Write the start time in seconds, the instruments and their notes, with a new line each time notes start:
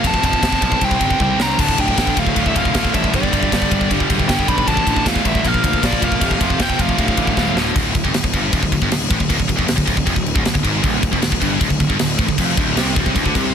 0.02 picked electric bass F1, distorted electric guitar F2 C3 F3, lead electric guitar C4, kick, ride
0.07 lead electric guitar A5
0.14 kick
0.22 picked electric bass F1, distorted electric guitar F2 C3 F3, lead electric guitar C4 A5, kick, ride
0.33 kick
0.42 picked electric bass F1, distorted electric guitar F2 C3 F3, kick, snare, ride
0.52 kick
0.61 picked electric bass B1, distorted electric guitar F2 C3 F3, lead electric guitar C4 A5, kick, ride
0.72 kick
0.81 picked electric bass C2, distorted electric guitar C3 G3 C4, lead electric guitar C4 G5, kick, ride
0.91 kick
1.00 picked electric bass G1, distorted electric guitar C3 G3 C4, kick, ride
1.10 kick
1.19 picked electric bass C2, distorted electric guitar C3 G3 C4, lead electric guitar C4 G5, kick, high tom
1.38 picked electric bass C2, distorted electric guitar C3 G3 C4, lead electric guitar D4 A#5, snare
1.58 picked electric bass D1, distorted electric guitar D2 A2 D3, lead electric guitar D4 A5, kick, crash
1.69 kick
1.77 picked electric bass D1, distorted electric guitar D2 A2 D3, lead electric guitar D4 G5, kick, ride
1.88 kick
1.97 picked electric bass A1, distorted electric guitar D2 A2 D3, kick, snare, ride
2.07 kick
2.16 picked electric bass D1, distorted electric guitar D2 A2 D3, lead electric guitar A3 F5, kick, ride
2.26 kick
2.35 picked electric bass D1, distorted electric guitar D2 A2 D3, kick, ride
2.46 lead electric guitar G3 E5, kick
2.55 picked electric bass F1, distorted electric guitar D2 A2 D3, lead electric guitar A3 F5, kick, ride
2.65 kick
2.74 picked electric bass D1, distorted electric guitar D2 A2 D3, kick, snare, ride
2.85 kick
2.94 picked electric bass A1, distorted electric guitar D2 A2 D3, lead electric guitar G3 E5, kick, ride
3.04 kick
3.13 picked electric bass G1, distorted electric guitar G2 D3 G3, lead electric guitar G3 D5, kick, ride
3.23 kick
3.32 picked electric bass G1, distorted electric guitar G2 D3 G3, kick, ride
3.43 kick
3.52 picked electric bass G1, distorted electric guitar G2 D3 G3, kick, snare, ride
3.62 kick
3.70 picked electric bass G1, distorted electric guitar G2 D3 G3, kick, ride
3.81 kick
3.90 picked electric bass G1, distorted electric guitar G2 D3 G3, kick, ride
4.00 kick
4.09 picked electric bass D1, distorted electric guitar G2 D3 G3, kick, ride
4.19 kick
4.29 picked electric bass G1, distorted electric guitar G2 D3 G3, lead electric guitar B3 G5, kick, snare, ride
4.39 kick
4.48 picked electric bass B1, distorted electric guitar G2 D3 G3, lead electric guitar D4 B5, kick, ride
4.58 kick
4.67 picked electric bass A1, distorted electric guitar D2 A2 D3, lead electric guitar D4 A5, kick, ride
4.77 kick
4.86 picked electric bass A1, distorted electric guitar D2 A2 D3, kick, ride
4.96 kick
5.05 distorted electric guitar D2 A2 D3, picked electric bass E2, lead electric guitar A3 F5, kick, snare, ride
5.16 kick
5.24 picked electric bass A1, distorted electric guitar D2 A2 D3, lead electric guitar G3 E5, kick, ride
5.35 kick
5.44 picked electric bass A#1, distorted electric guitar A#2 F3 A#3, lead electric guitar A#3 F5, kick, ride
5.54 kick
5.63 picked electric bass D2, distorted electric guitar A#2 F3 A#3, kick, ride
5.73 kick
5.81 picked electric bass A#1, distorted electric guitar A#2 F3 A#3, lead electric guitar F3 D5, kick, snare, ride
5.92 kick
6.02 picked electric bass F1, distorted electric guitar A#2 F3 A#3, lead electric guitar A3 F5, kick, ride
6.12 kick
6.21 picked electric bass F1, distorted electric guitar F2 C3 F3, kick, ride
6.31 kick
6.40 picked electric bass F1, distorted electric guitar F2 C3 F3, lead electric guitar A3 F5, kick, ride
6.50 kick
6.59 picked electric bass F1, distorted electric guitar F2 C3 F3, lead electric guitar C4 G5, kick, snare, ride
6.70 kick
6.78 picked electric bass F1, distorted electric guitar F2 C3 F3, lead electric guitar A3 F5, kick, ride
6.89 kick
6.97 picked electric bass D1, distorted electric guitar D2 A2 D3, kick, ride
7.08 kick
7.17 picked electric bass A1, distorted electric guitar D2 A2 D3, kick, ride
7.27 kick
7.36 picked electric bass D1, distorted electric guitar D2 A2 D3, kick, snare
7.55 picked electric bass D1, distorted electric guitar D2 A2 D3, snare
7.75 picked electric bass D1, distorted electric guitar D2, kick, crash
7.95 picked electric bass D1, distorted electric guitar D2, kick, crash
8.04 picked electric bass F1, distorted electric guitar F2, kick
8.14 picked electric bass D1, distorted electric guitar D2, snare, crash
8.24 picked electric bass D1, distorted electric guitar D2, kick
8.33 picked electric bass G1, distorted electric guitar G2, kick, crash
8.53 picked electric bass D1, distorted electric guitar D2, kick, crash
8.62 picked electric bass D1, distorted electric guitar D2, kick
8.72 picked electric bass D1, distorted electric guitar D2, kick, crash
8.82 picked electric bass G1, distorted electric guitar G2, kick
8.91 picked electric bass D1, distorted electric guitar D2, snare, crash
9.10 picked electric bass A1, distorted electric guitar A2, kick, crash
9.20 picked electric bass D1, distorted electric guitar D2, kick
9.29 picked electric bass D1, distorted electric guitar D2, kick, crash
9.38 picked electric bass D1, distorted electric guitar D2, kick
9.48 picked electric bass D1, distorted electric guitar D2, kick, crash
9.57 picked electric bass F1, distorted electric guitar F2, kick
9.66 picked electric bass D1, distorted electric guitar D2, snare, crash
9.76 picked electric bass D1, distorted electric guitar D2, kick
9.86 picked electric bass D1, distorted electric guitar D2, kick, crash
9.96 picked electric bass D1, distorted electric guitar D2, kick
10.06 picked electric bass F1, distorted electric guitar F2, kick, crash
10.16 picked electric bass D1, distorted electric guitar D2, kick
10.26 crash
10.35 picked electric bass D1, distorted electric guitar D2, kick
10.45 picked electric bass D1, distorted electric guitar D2, snare, crash
10.54 picked electric bass D1, distorted electric guitar D2, kick
10.63 picked electric bass G#1, distorted electric guitar G#2, kick, crash
10.83 picked electric bass D1, distorted electric guitar D2, kick, crash
11.02 picked electric bass D1, distorted electric guitar D2, kick, crash
11.11 picked electric bass F1, distorted electric guitar F2, kick
11.21 picked electric bass D1, distorted electric guitar D2, snare, crash
11.32 picked electric bass D1, distorted electric guitar D2, kick
11.40 picked electric bass G1, distorted electric guitar G2, kick, crash
11.60 picked electric bass D1, distorted electric guitar D2, kick, crash
11.70 picked electric bass D1, distorted electric guitar D2, kick
11.80 picked electric bass D1, distorted electric guitar D2, kick, crash
11.89 picked electric bass G1, distorted electric guitar G2, kick
11.99 picked electric bass D1, distorted electric guitar D2, snare, crash
12.18 picked electric bass A1, distorted electric guitar A2, kick, crash
12.28 picked electric bass D1, distorted electric guitar D2, kick
12.38 picked electric bass F1, distorted electric guitar F2, kick, crash
12.57 picked electric bass D1, distorted electric guitar D2, kick, crash
12.77 picked electric bass C2, distorted electric guitar C3, snare, crash
12.96 picked electric bass D1, distorted electric guitar D2, kick, crash
13.06 picked electric bass C2, distorted electric guitar C3, kick
13.14 picked electric bass D1, distorted electric guitar D2, kick, crash
13.24 picked electric bass D2, distorted electric guitar D3, kick
13.34 picked electric bass C2, distorted electric guitar C3, kick, crash